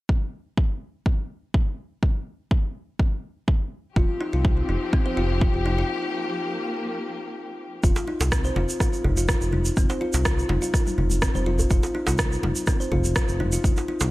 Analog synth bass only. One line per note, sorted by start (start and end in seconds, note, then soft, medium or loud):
3.96 4.05 F1 medium
4.33 4.63 C2 medium
4.69 4.77 F1 medium
5.17 5.47 F1 medium
5.54 5.84 F1 loud
7.84 7.92 F1 loud
8.21 8.50 C2 medium
8.56 8.64 F1 medium
9.05 9.34 F1 medium
9.42 9.71 F1 loud
9.77 9.85 F1 loud
10.14 10.43 C2 medium
10.50 10.58 F1 loud
10.98 11.28 F1 medium
11.35 11.64 F1 loud
11.71 11.79 F1 loud
12.07 12.37 C2 medium
12.43 12.51 F1 loud
12.92 13.21 F1 medium
13.28 13.58 F1 loud
13.64 13.73 F1 medium
14.01 14.11 C2 medium